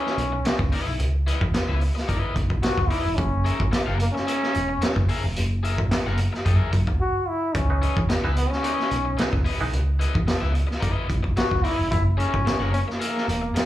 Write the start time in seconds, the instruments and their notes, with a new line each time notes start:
Already playing: trombone C#4, overdriven electric guitar D#5
0.00 overdriven electric guitar E4 B4
0.06 snare
0.17 fingered electric bass B1, muted overdriven electric guitar stroke, closed hi-hat
0.32 muted overdriven electric guitar stroke
0.45 muted overdriven electric guitar stroke, muted fingered electric bass stroke, snare, closed hi-hat
0.59 fingered electric bass C#2, muted overdriven electric guitar stroke, kick
0.72 overdriven electric guitar E4 B4 D#5, open hi-hat
0.86 fingered electric bass B1, muted overdriven electric guitar stroke
0.99 fingered electric bass C#2, closed hi-hat
1.27 overdriven electric guitar E4 B4 D#5, closed hi-hat
1.41 fingered electric bass E2, kick
1.54 muted overdriven electric guitar stroke, muted fingered electric bass stroke, snare, closed hi-hat
1.69 fingered electric bass C#2, overdriven electric guitar E4 B4 E5
1.81 muted overdriven electric guitar stroke, open hi-hat
1.95 muted overdriven electric guitar stroke, snare
2.08 overdriven electric guitar D#4 A#4 D#5, kick, closed hi-hat
2.19 overdriven electric guitar E4 B4
2.36 fingered electric bass B1, muted overdriven electric guitar stroke, kick, closed hi-hat
2.50 muted overdriven electric guitar stroke, kick
2.63 trombone F#4, muted overdriven electric guitar stroke, muted fingered electric bass stroke, snare, closed hi-hat
2.77 fingered electric bass C#2, muted overdriven electric guitar stroke, kick
2.88 trombone E4, overdriven electric guitar E4 B4 D#5, open hi-hat
3.05 fingered electric bass E1, muted overdriven electric guitar stroke
3.16 fingered electric bass F#1, trombone C#4, kick, closed hi-hat
3.45 overdriven electric guitar G#4 A#4 E5, closed hi-hat
3.60 fingered electric bass G#1, kick
3.71 muted overdriven electric guitar stroke, snare, closed hi-hat
3.86 fingered electric bass F#1, overdriven electric guitar G#4 A#4 F#5
3.99 trombone A#3, muted overdriven electric guitar stroke, closed hi-hat
4.13 trombone C#4, muted overdriven electric guitar stroke, snare
4.27 overdriven electric guitar G#4 A#4 E5, closed hi-hat
4.43 snare
4.54 fingered electric bass E1, muted overdriven electric guitar stroke, closed hi-hat
4.69 muted overdriven electric guitar stroke
4.81 muted overdriven electric guitar stroke, muted fingered electric bass stroke, snare, closed hi-hat
4.96 fingered electric bass F#1, muted overdriven electric guitar stroke, kick
5.09 overdriven electric guitar G#4 A#4 E5, open hi-hat
5.24 fingered electric bass E1, muted overdriven electric guitar stroke
5.36 fingered electric bass F#1, closed hi-hat
5.63 overdriven electric guitar G#4 A#4 E5, closed hi-hat
5.78 fingered electric bass G#1, kick
5.91 muted fingered electric bass stroke, muted overdriven electric guitar stroke, snare, closed hi-hat
6.07 fingered electric bass F#1, overdriven electric guitar G#4 A#4 F#5
6.17 muted overdriven electric guitar stroke, closed hi-hat
6.33 muted overdriven electric guitar stroke, snare
6.45 fingered electric bass F#2, overdriven electric guitar G4 A4 D#5, kick, closed hi-hat
6.56 overdriven electric guitar G#4 A#4 E5
6.72 fingered electric bass F#2, muted overdriven electric guitar stroke, kick, closed hi-hat
6.87 fingered electric bass C#2, muted overdriven electric guitar stroke, kick
7.01 trombone F#4
7.29 trombone E4
7.54 fingered electric bass C#2, trombone C#4, kick, closed hi-hat
7.70 clav E3 G#3 B3 D#4
7.82 overdriven electric guitar E4 B4 D#5, closed hi-hat
7.97 fingered electric bass E2, kick
8.09 muted overdriven electric guitar stroke, muted fingered electric bass stroke, snare, closed hi-hat
8.24 fingered electric bass C#2, clav E3 G#3 B3 D#4, overdriven electric guitar E4 B4 E5
8.36 trombone B3, muted overdriven electric guitar stroke, closed hi-hat
8.50 trombone C#4, muted overdriven electric guitar stroke, snare
8.63 clav E3 G#3 B3 D#4, overdriven electric guitar D#4 A#4 D5, closed hi-hat
8.74 overdriven electric guitar E4 B4 D#5
8.80 snare
8.90 fingered electric bass B1, muted overdriven electric guitar stroke, closed hi-hat
9.05 muted overdriven electric guitar stroke
9.17 clav E3 G#3 B3 D#4, muted overdriven electric guitar stroke, snare, closed hi-hat
9.33 fingered electric bass C#2, muted overdriven electric guitar stroke, kick
9.45 overdriven electric guitar E4 B4 D#5, open hi-hat
9.60 fingered electric bass B1, clav E3 G#3 B3 D#4, muted overdriven electric guitar stroke
9.73 fingered electric bass C#2, closed hi-hat
9.99 overdriven electric guitar E4 B4 D#5, closed hi-hat
10.15 fingered electric bass E2, kick
10.27 muted overdriven electric guitar stroke, muted fingered electric bass stroke, snare, closed hi-hat
10.41 fingered electric bass C#2, overdriven electric guitar E4 B4 E5
10.53 muted overdriven electric guitar stroke, closed hi-hat
10.67 muted overdriven electric guitar stroke, snare
10.80 overdriven electric guitar D#4 A#4 D5, kick, closed hi-hat
10.91 overdriven electric guitar E4 B4 D#5
11.08 fingered electric bass B1, muted overdriven electric guitar stroke, kick, closed hi-hat
11.23 muted overdriven electric guitar stroke, kick
11.37 trombone F#4, muted overdriven electric guitar stroke, muted fingered electric bass stroke, snare, closed hi-hat
11.51 fingered electric bass C#2, muted overdriven electric guitar stroke, kick
11.64 overdriven electric guitar E4 B4 D#5, trombone E4, open hi-hat
11.78 fingered electric bass E1, muted overdriven electric guitar stroke
11.91 fingered electric bass F#1, trombone E4, kick, closed hi-hat
12.17 trombone C#4, overdriven electric guitar G#4 A#4 E5, closed hi-hat
12.34 fingered electric bass G#1, kick
12.45 muted overdriven electric guitar stroke, snare, closed hi-hat
12.60 fingered electric bass F#1, overdriven electric guitar G#4 A#4 F#5
12.72 trombone C#4, muted overdriven electric guitar stroke, closed hi-hat
12.88 trombone A#3, muted overdriven electric guitar stroke, snare
13.00 overdriven electric guitar G#4 A#4 E5, closed hi-hat
13.17 snare
13.27 fingered electric bass E1, muted overdriven electric guitar stroke, closed hi-hat
13.42 muted overdriven electric guitar stroke
13.54 muted overdriven electric guitar stroke, muted fingered electric bass stroke, snare, closed hi-hat